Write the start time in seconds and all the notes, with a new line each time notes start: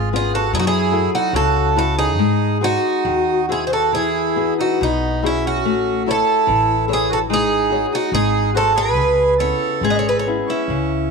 Already playing: G#1 G#3 G#4
0.13 B3 C#4 F4 G#4
0.33 F#4 A4
0.53 F#2 F#3 E4 G#4
0.59 D#4 F#4
0.67 E4 G#4
0.92 E4 F#4 A4
1.14 D#4 F#4
1.33 C#2 C#3 F#4 A4
1.76 E4 F#4 A4
1.98 D#4 G#4
2.18 G#2 G#3
2.61 D#4 F#4 G#4 C5
3.05 D#2 D#3
3.49 E4 F#4 G#4 C5
3.66 G#4 C5
3.71 F#4 A4
3.91 E2 E3 E4 G#4
4.36 B3 F#4 G#4
4.58 D#4 F#4
4.81 B1 B2 B3 D#4
5.23 C#4 E4 F#4 G#4
5.45 C#4 F#4
5.65 A1 A3
6.06 E4 A4 C#5
6.11 A4
6.47 A1 E3
6.88 E4 G#4 A4 C#5
6.93 G#4
7.10 F#4 A4
7.29 G#1 G#3 D#4
7.33 G#4
7.70 F#4 G#4 C#5
7.91 D#4 F#4
8.12 G#1 G#3 D#4 G#4
8.54 F#4 G#4 A4 C5
8.75 G#4 B4
8.94 C#2 C#3
9.38 B3 C#4 E4 A4 C#5
9.81 G#1 G#3 G#4
9.89 B4 D#5
9.98 A4 C#5
10.06 G#4 B4
10.15 A4
10.19 C#5
10.27 B3 C#4 E4
10.46 C#4 E4
10.68 C#2 C#3